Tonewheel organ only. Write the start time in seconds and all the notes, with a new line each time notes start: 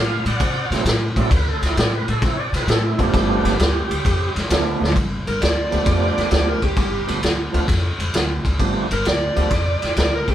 Already playing: F5
0.27 D5 F#5
0.71 F#3 A3 C4 E4
1.16 F#3 A3 C4 E4 D5
1.35 B4
1.48 A4
1.66 E4
1.80 D5
1.95 B4
2.10 A4
2.26 E4
2.36 C#5 D5
2.56 B4
2.70 A4
2.86 E4
2.98 F3 A3 B3 D4
3.02 G4
4.49 F3 A3 B3 D4
5.71 F3 A3 B3 D4 G4
6.31 F3 A3 B3 D4 G4
7.06 F3 A3 B3 D4 G4
7.52 F3 A3 B3 D4 F4
8.59 F3 A3 B3 D4 G4
9.35 F3 A3 B3 D4 G4